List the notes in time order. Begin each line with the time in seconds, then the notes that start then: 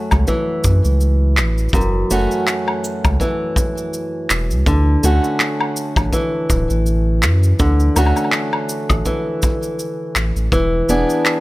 Already playing: F#2 A3 C#4 F#4
0.11 C#2, kick, low woodblock, shaker
0.27 E3, kick, shaker
0.64 F#2, kick, shaker
0.85 C#2, shaker
1.01 shaker
1.37 A1, clap, shaker
1.58 shaker
1.69 shaker
1.73 F#1 F#2, kick, shaker
1.81 shaker
2.10 F#1 A3 C#4 F#4, shaker
2.31 shaker
2.47 clap, shaker
2.68 low woodblock
2.84 shaker
3.04 C#2, kick, low woodblock, shaker
3.20 E3, kick, shaker
3.56 kick, shaker
3.78 shaker
3.94 shaker
4.30 E1, clap, shaker
4.51 C#2, shaker
4.66 D2 D3, kick, shaker
5.03 D2 A3 C#4 F#4, shaker
5.24 shaker
5.40 clap, shaker
5.61 low woodblock
5.76 shaker
5.96 A1, kick, low woodblock, shaker
6.13 E3, kick, shaker
6.50 D1, kick, shaker
6.70 A1, shaker
6.86 shaker
7.23 F#2, clap, shaker
7.43 shaker
7.59 D2 D3, kick, shaker
7.80 shaker
7.96 D2 A3 C#4 F#4, low woodblock, shaker
8.06 low woodblock
8.16 low woodblock, shaker
8.24 low woodblock
8.32 clap, shaker
8.53 low woodblock
8.69 shaker
8.89 A1, kick, low woodblock, shaker
9.05 E3, kick, shaker
9.42 kick, shaker
9.63 shaker
9.79 shaker
10.16 A1, clap, shaker
10.36 A1, shaker
10.52 E1 E3, kick, shaker
10.88 E1 B3 D4 G#4, shaker
11.10 shaker
11.26 clap, shaker